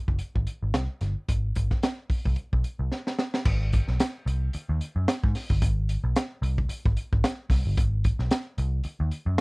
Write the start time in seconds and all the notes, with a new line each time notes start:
0.08 F#1, kick
0.19 closed hi-hat
0.35 G#1, kick
0.47 closed hi-hat
0.63 G#1
0.74 C2, snare, closed hi-hat
1.01 G1, snare, closed hi-hat
1.29 G#1, kick, closed hi-hat
1.55 G#1, kick, closed hi-hat
1.71 kick, snare
1.83 snare, closed hi-hat
2.10 muted picked electric bass stroke, kick, open hi-hat
2.25 C2, kick
2.36 closed hi-hat
2.53 B1, kick
2.64 closed hi-hat
2.79 C2
2.92 snare
3.07 snare
3.19 snare
3.34 snare
3.45 G#1, kick, crash
3.73 kick, closed hi-hat
3.88 B1, snare
4.00 snare, closed hi-hat
4.26 C2, closed hi-hat
4.53 muted picked electric bass stroke, closed hi-hat
4.69 D#2
4.81 closed hi-hat
4.96 F#2
5.08 snare, closed hi-hat
5.24 G#2, kick
5.35 snare, open hi-hat
5.50 G1, kick
5.62 G#1, kick, closed hi-hat
5.89 closed hi-hat
6.04 B1
6.16 snare, closed hi-hat
6.42 C2, closed hi-hat
6.58 kick
6.69 muted picked electric bass stroke, closed hi-hat
6.85 G#1, kick
6.97 closed hi-hat
7.13 G#1, kick
7.24 snare, closed hi-hat
7.50 C2, kick, snare, open hi-hat
7.65 G1
7.77 G#1, kick, closed hi-hat
8.04 kick, closed hi-hat
8.19 B1, snare
8.31 snare, closed hi-hat
8.58 C2, closed hi-hat
8.84 muted picked electric bass stroke, closed hi-hat
9.00 D#2
9.11 closed hi-hat
9.26 F#2